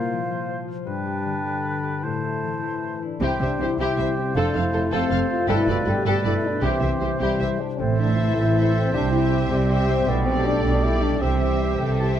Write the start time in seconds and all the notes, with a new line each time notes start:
Already playing: A#2 A#3 F4 C5 F5
0.12 F3
0.30 F3 F4
0.49 C5
0.68 F4
0.86 G2 G3 D4 B4 G5
1.06 G4
1.25 D3
1.44 D3 G4
1.64 B4
1.83 G4
2.03 A2 A3 E4 C5 A5
2.24 E4
2.43 E3
2.62 E3 A3 E4
2.83 A4
3.02 D4 E4
3.21 C2 C3 G3 C4 E4 G4 C5 G5
3.40 C2 C3 C4 D4 G4 C5 E5
3.60 C2 C3 E4 G4 C5
3.77 C2 C3 E4 G4 C5 G5
3.81 G4
3.98 C2 C3 G4 C5 E5
4.17 C4 G4
4.35 F1 F2 A3 D4 F4 A4 C5 F5
4.55 F1 F2 C4 E4 A4 C5 F5
4.73 F1 F2 F4 A4 C5
4.91 F1 F2 C4 F4 A4 C5 F5
5.10 F1 F2 A4 C5 F5
5.29 F4 A4
5.47 G1 G2 B2 A3 E4 G4 A4 B4 D5
5.67 G1 G2 B3 F4 A4 B4 D5
5.85 G1 G2 D4 G4 A4 B4
6.05 G1 G2 B2 A3 G4 A4 B4 D5
6.24 G1 G2 E4 A4 B4 D5
6.43 D4 A4
6.61 C2 C3 E3 C4 E4 G4 C5 E5
6.81 C2 C3 C4 G4 C5 E5
7.01 C2 C3 E4 G4 C5
7.20 C2 C3 E3 G3 C4 E4 G4 C5 E5
7.40 C2 C3 G4 C5 E5
7.59 D4 G4
7.78 A1 A2 E3 C4 A4 C5 E5
7.97 C4 D4 A4 C5 E5
8.16 E4
8.36 A1 A2 E4 A4
8.55 A4 C5 E5
8.74 C4 A4
8.92 C2 C3 G3 D4 G4 C5 E5 G5
9.11 C4 E4 G4 C5 E5
9.31 E4
9.50 C2 C3 G3 G4
9.69 G4 C5 E5
9.88 C4 G4
10.06 B1 B2 A3 B3 A4 D5
10.25 A3 C4 G4 A4 D5
10.45 D4
10.63 B1 B2 D4 G4
10.82 E4 G4 A4 D5
11.02 D4 G4
11.20 C2 C3 E3 G3 C4 G4 C5 E5 G5
11.41 G3 G4 C5 E5
11.61 E4
11.79 C2 C3 G4 A4 G5
11.99 E4 G4 C5 E5 A5